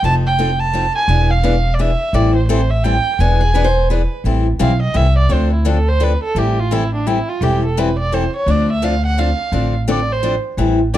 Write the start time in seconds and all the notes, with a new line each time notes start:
0.03 F1 F3 C4 D#4 A4 A5
0.27 G5
0.39 F3 C4 D#4 A4
0.52 G5
0.60 A5
0.73 F3 C4 D#4 A4
0.95 G#5
1.08 E1 E3 B3 D4 G#4
1.30 F5
1.43 E3 B3 D4 G#4
1.74 D5
1.79 E3 B3 D4 G#4 E5
2.13 A1 E3 G3 C4 E4 A4 D5
2.35 C5
2.48 E3 G3 C4 E4 A4 C5
2.70 E5
2.84 E3 G3 C4 E4 A4 G5
3.19 E1 E3 B3 D4 G#4 G#5
3.41 G#4
3.54 E3 B3 D4 G#4 B4
3.64 C5
3.90 E3 B3 D4 G#4 B4
4.24 A1 E3 G3 C4 E4 A4
4.59 B1 E3 G3 C4 E4 A4 F5
4.82 D#5
4.94 C2 E3 G3 C4 E4 A4 E5
5.18 D5
5.29 D2 D3 F3 C4 D4 A4 C5
5.53 E4
5.65 D3 F3 C4 D4 A4
5.88 C5
6.00 D3 F3 C4 D4 A4 B4
6.23 A4
6.35 A1 E3 G3 C4 E4 G4 A4
6.59 F4
6.71 E3 G3 C4 E4 A4
6.95 D4
7.07 E3 G3 C4 E4 A4
7.28 F4
7.41 E1 E3 G3 C4 E4 G4 A4
7.65 A4
7.77 E3 G3 C4 E4 A4 B4
7.99 D5
8.12 E3 G3 C4 E4 A4 C5
8.36 C#5
8.46 D2 D3 F3 C4 D4 A4 D5
8.72 E5
8.82 D3 F3 C4 D4 A4 F5
9.06 F#5
9.18 D3 F3 C4 D4 A4 F5
9.52 A1 D3 F3 C4 D4 A4
9.88 D3 F3 C4 D4 A4 D5
10.12 C5
10.23 D3 F3 C4 D4 A4
10.57 A1 E3 G3 C4 E4 A4
10.94 E3 G3 C4 E4 D5